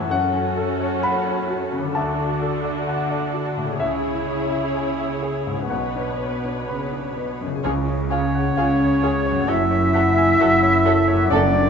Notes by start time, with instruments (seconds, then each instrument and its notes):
Already playing: harp F#2 C#4, grand piano A2 E3 C#4 E4 A4 C#5 E5
0.02 harp F#4
0.06 viola section C#4 F#4, harp A4, violin section A4
0.11 cello section F#2, grand piano F#2 F#5
0.33 grand piano C#4
0.57 grand piano A4
0.81 grand piano C#5
1.03 grand piano F#5 B5
1.27 grand piano C#5
1.50 grand piano F#4
1.73 grand piano C#3
1.78 harp D3
1.83 harp D4
1.87 harp F#4
1.91 cello section D3, viola section D4 F#4, harp A4, violin section A4, grand piano A5
1.96 grand piano D2
2.19 grand piano D4
2.42 grand piano A4
2.65 grand piano D5
2.87 grand piano F#5
3.11 grand piano D5
3.34 grand piano F#4
3.57 grand piano A2
3.62 harp C#3
3.67 harp E4
3.71 harp G#4
3.76 viola section E4 G#4, harp C#5, grand piano E5
3.80 grand piano C#2, cello section C#3, violin section C#5
4.03 grand piano E4
4.27 grand piano C#5
4.50 grand piano E5
4.74 grand piano G#5
4.98 grand piano E5
5.22 grand piano G#4
5.47 grand piano G#2
5.52 harp B2
5.57 harp C#4
5.61 harp B4
5.66 harp C#5, grand piano F#5
5.70 grand piano B1, cello section B2, viola section B3 B4, violin section C#5
5.95 grand piano D4
6.19 grand piano C#5
6.45 grand piano D4
6.67 cello section C#3, grand piano B5
6.93 grand piano D4
7.16 cello section B2, grand piano B4
7.41 grand piano F#2
7.46 harp C#3
7.51 harp F4
7.55 harp G#4
7.60 viola section F4, harp C#5, violin section C#5
7.64 double bass section C#2, grand piano C#2, cello section C#3, timpani C#3, violin section G#4
7.88 grand piano C#5
8.10 french horn section C#4, viola section F4, violin section G#4 C#5, oboe C#5, flute C#5, grand piano F5
8.35 grand piano F#5
8.57 double bass section C#2, cello section C#3, viola section F4, violin section G#4 C#5, grand piano F5
8.80 grand piano C#5
9.03 viola section F4, grand piano G#4, violin section G#4 C#5
9.26 grand piano C#5
9.30 harp F#2
9.35 harp F#4
9.40 harp A3
9.44 viola section F#4, harp C#5
9.48 double bass section F#1, grand piano F#2, cello section F#2, french horn section E4, violin section A4 C#5, oboe E5, flute E5
9.71 grand piano C#5
9.94 viola section F#4, violin section A4 C#5, grand piano F#5
10.17 grand piano G#5
10.40 double bass section F#1, cello section F#2, viola section F#4, violin section A4 C#5, grand piano F#5
10.63 grand piano C#5
10.85 viola section F#4, grand piano A4, violin section A4 C#5
11.08 grand piano C#5
11.13 harp F#2
11.17 harp F#4
11.26 cello section F#2, french horn section D4, harp D5
11.30 double bass section F#1, grand piano F#2, timpani F#2, viola section A4, violin section A4 D5, flute D5, oboe D5
11.53 grand piano D5